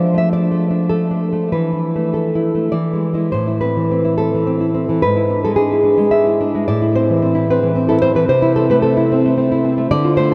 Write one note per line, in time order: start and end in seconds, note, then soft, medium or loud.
0.00 1.47 F3 medium
0.00 0.31 D4 soft
0.00 0.16 D5 medium
0.14 0.50 A3 soft
0.14 0.32 E5 medium
0.33 0.69 D4 medium
0.33 0.88 D5 medium
0.51 0.89 A3 soft
0.71 1.10 D4 medium
0.89 1.31 A3 soft
0.89 1.49 A4 medium
1.11 1.52 D4 soft
1.33 1.52 A3 soft
1.52 2.69 E3 medium
1.52 2.71 B4 medium
1.73 2.34 E4 soft
1.96 2.54 A3 soft
2.14 2.73 A4 soft
2.35 2.74 E4 soft
2.55 2.74 A3 soft
2.72 3.30 E3 medium
2.72 3.30 D5 medium
2.93 3.12 G#3 soft
3.13 3.31 G#3 soft
3.13 3.31 E4 soft
3.32 4.98 A2 medium
3.32 3.59 C5 medium
3.48 4.04 E4 soft
3.61 3.90 C4 soft
3.61 4.15 B4 medium
3.77 4.33 E3 medium
3.91 4.18 C4 soft
4.05 4.59 E4 medium
4.18 4.46 C4 soft
4.18 4.98 A4 medium
4.34 4.88 E3 soft
4.47 4.73 C4 soft
4.61 5.02 E4 medium
4.74 5.01 C4 soft
4.89 5.02 E3 soft
5.02 6.66 G#2 medium
5.02 5.41 B4 medium
5.17 5.71 E4 medium
5.30 5.56 D4 medium
5.45 5.96 G#3 medium
5.45 5.56 A4 medium
5.56 5.82 D4 medium
5.56 6.10 G#4 medium
5.72 6.26 E4 medium
5.84 6.11 D4 medium
5.98 6.54 G#3 medium
6.11 6.39 D4 medium
6.11 6.65 E5 medium
6.27 6.68 E4 medium
6.41 6.68 D4 soft
6.55 6.68 G#3 medium
6.68 8.27 A2 medium
6.68 6.94 D5 loud
6.82 7.34 E4 medium
6.95 7.21 C4 medium
6.95 7.47 C5 loud
7.10 7.62 E3 medium
7.22 7.49 C4 medium
7.35 7.89 E4 medium
7.50 7.74 C4 medium
7.50 7.88 B4 loud
7.63 8.14 E3 medium
7.75 8.02 C4 medium
7.89 8.30 E4 medium
7.89 8.01 A4 medium
8.02 8.30 C4 medium
8.02 8.16 C5 loud
8.15 8.28 E3 medium
8.15 8.29 B4 medium
8.29 9.86 C3 medium
8.29 8.56 C5 loud
8.42 8.96 E4 medium
8.56 8.82 C4 medium
8.56 8.70 A4 loud
8.70 9.24 A3 medium
8.70 8.82 B4 loud
8.82 9.11 C4 medium
8.82 9.34 A4 medium
8.97 9.50 E4 medium
9.12 9.36 C4 medium
9.26 9.76 A3 medium
9.37 9.63 C4 medium
9.52 9.91 E4 medium
9.65 9.90 C4 medium
9.78 9.91 A3 medium
9.91 10.34 D3 medium
9.91 10.16 D5 loud
10.05 10.34 F4 medium
10.17 10.34 A3 medium
10.17 10.34 C5 loud